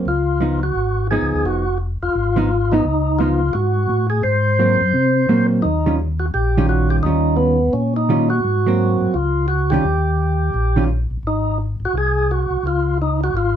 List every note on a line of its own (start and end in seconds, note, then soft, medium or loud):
0.05 0.72 C#2 medium
0.05 0.60 F4 medium
0.41 0.60 F3 medium
0.41 0.61 B3 medium
0.41 0.61 D#4 medium
0.63 1.07 F#4 medium
0.75 1.19 G#1 medium
1.11 1.63 F3 medium
1.11 1.64 B3 medium
1.11 1.64 D#4 medium
1.11 1.47 G#4 medium
1.22 1.33 C#2 medium
1.34 1.45 D2 medium
1.45 1.98 F1 medium
1.45 1.78 F#4 medium
2.03 2.09 F1 soft
2.03 2.74 F4 medium
2.15 2.82 G#1 medium
2.36 2.48 F3 medium
2.36 2.49 B3 medium
2.36 2.49 D#4 medium
2.72 2.84 F3 medium
2.72 2.84 B3 medium
2.72 3.21 D#4 loud
2.72 2.85 D#4 medium
2.84 3.51 C#2 medium
3.19 3.40 F3 medium
3.19 3.40 B3 medium
3.19 3.40 D#4 medium
3.19 3.55 F4 medium
3.53 3.87 G#2 medium
3.53 4.07 F#4 medium
3.89 4.22 A2 medium
4.10 4.23 G#4 medium
4.23 4.77 G#2 medium
4.23 5.47 C5 loud
4.59 4.79 F#3 medium
4.59 4.79 A#3 medium
4.59 4.80 C4 medium
4.81 4.93 F#2 medium
4.94 5.27 C3 medium
5.29 5.62 A#2 medium
5.29 5.64 F#3 medium
5.29 5.64 A#3 medium
5.29 5.65 C4 medium
5.62 6.31 D#2 medium
5.62 5.96 D#4 medium
5.86 5.98 D#3 medium
5.86 5.98 G3 medium
5.86 5.98 C#4 medium
5.86 5.99 F4 medium
6.20 6.26 F#4 medium
6.34 7.01 A#1 medium
6.34 6.66 G4 medium
6.57 7.02 D#3 medium
6.57 7.02 G3 medium
6.57 7.02 C#4 medium
6.57 7.02 F4 medium
6.69 6.90 F#4 medium
6.90 6.96 G4 medium
7.03 7.70 D#2 medium
7.03 7.57 D#3 medium
7.03 7.58 G3 medium
7.03 7.58 C#4 medium
7.03 7.36 D#4 medium
7.03 7.58 F4 medium
7.37 7.74 B3 medium
7.73 8.40 A#2 medium
7.73 7.94 C#4 medium
7.96 8.29 D#4 medium
8.09 8.29 D#3 medium
8.09 8.29 G3 medium
8.09 8.29 C#4 medium
8.09 8.29 F4 medium
8.30 9.16 F#4 medium
8.44 8.97 G#2 medium
8.67 9.12 F#3 medium
8.67 9.12 A#3 medium
8.67 9.12 C4 medium
9.01 9.08 G#2 soft
9.14 9.81 C#2 medium
9.14 9.46 F4 medium
9.48 9.71 F#4 medium
9.70 9.83 D#3 medium
9.70 9.83 G3 medium
9.70 9.84 C#4 medium
9.70 9.84 F4 medium
9.70 10.84 G4 medium
9.85 10.51 D#2 medium
10.54 11.07 A#1 medium
10.76 10.88 D#3 medium
10.76 10.88 G3 medium
10.76 10.88 C#4 medium
10.76 10.88 F4 medium
11.11 11.17 A#1 soft
11.23 11.76 G#1 medium
11.23 11.58 D#4 medium
11.80 11.87 G#1 soft
11.85 11.95 F#4 medium
11.93 12.46 C2 medium
11.98 12.32 G#4 loud
12.31 12.66 F#4 medium
12.51 12.57 C2 soft
12.63 13.30 C#2 medium
12.63 12.98 F4 medium
13.02 13.21 D#4 medium
13.24 13.36 F#4 medium
13.34 13.56 G#1 medium
13.34 13.56 F4 medium